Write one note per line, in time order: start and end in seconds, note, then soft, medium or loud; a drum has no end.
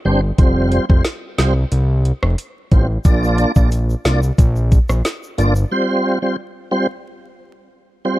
0.05 0.32 G1 medium
0.05 0.21 G3 medium
0.05 0.21 C4 medium
0.05 0.21 D4 medium
0.05 0.21 C5 medium
0.38 0.79 F1 loud
0.38 0.85 G3 medium
0.38 0.85 C4 medium
0.38 0.85 F4 medium
0.38 0.85 C5 loud
0.38 kick loud
0.38 closed hi-hat medium
0.72 closed hi-hat soft
0.89 1.02 F1 loud
0.89 1.03 G3 medium
0.89 1.03 C4 medium
0.89 1.03 F4 medium
0.89 1.03 C5 medium
0.89 kick medium
1.05 snare loud
1.05 closed hi-hat medium
1.38 1.65 C2 loud
1.38 1.54 G3 medium
1.38 1.54 C4 medium
1.38 1.54 F4 medium
1.38 1.54 C5 medium
1.38 snare loud
1.38 closed hi-hat medium
1.72 2.12 C2 loud
1.72 closed hi-hat medium
2.05 closed hi-hat soft
2.23 2.35 F1 medium
2.23 cross-stick loud
2.38 closed hi-hat medium
2.71 2.98 A1 medium
2.71 2.87 G3 medium
2.71 2.87 C4 medium
2.71 2.87 F4 medium
2.71 2.87 C5 medium
2.71 kick medium
2.71 closed hi-hat soft
3.05 3.45 A#1 loud
3.05 3.52 A#3 medium
3.05 3.52 D4 medium
3.05 3.52 F4 medium
3.05 3.52 D5 loud
3.05 kick loud
3.05 closed hi-hat medium
3.05 shaker medium
3.24 shaker medium
3.38 closed hi-hat soft
3.38 shaker soft
3.56 3.95 A#1 loud
3.56 3.70 A#3 medium
3.56 3.70 D4 medium
3.56 3.70 F4 medium
3.56 3.70 D5 medium
3.56 kick medium
3.56 shaker medium
3.71 closed hi-hat medium
3.71 shaker medium
3.90 shaker medium
4.05 4.31 C2 medium
4.05 4.20 A#3 medium
4.05 4.21 D4 medium
4.05 4.21 F4 medium
4.05 4.21 D5 medium
4.05 snare loud
4.05 closed hi-hat medium
4.05 shaker medium
4.23 shaker medium
4.38 4.79 A#1 loud
4.38 kick loud
4.38 closed hi-hat medium
4.38 shaker medium
4.56 shaker soft
4.72 kick medium
4.72 closed hi-hat medium
4.72 shaker medium
4.89 5.02 A#1 medium
4.89 cross-stick loud
4.89 shaker medium
5.05 snare loud
5.05 closed hi-hat medium
5.05 shaker medium
5.23 shaker medium
5.38 5.65 G1 medium
5.38 5.54 A#3 medium
5.38 5.54 D4 medium
5.38 5.54 F4 medium
5.38 5.54 D5 medium
5.38 closed hi-hat soft
5.38 shaker medium
5.56 shaker medium
5.71 6.18 G3 medium
5.71 6.19 C4 medium
5.71 6.19 F4 medium
5.71 6.19 C5 loud
6.22 6.36 G3 medium
6.22 6.36 C4 medium
6.22 6.36 F4 medium
6.22 6.36 C5 medium
6.71 6.87 G3 medium
6.71 6.87 C4 medium
6.71 6.87 F4 medium
6.71 6.87 C5 medium
8.05 8.19 G3 medium
8.05 8.19 C4 medium
8.05 8.19 F4 medium
8.05 8.19 C5 medium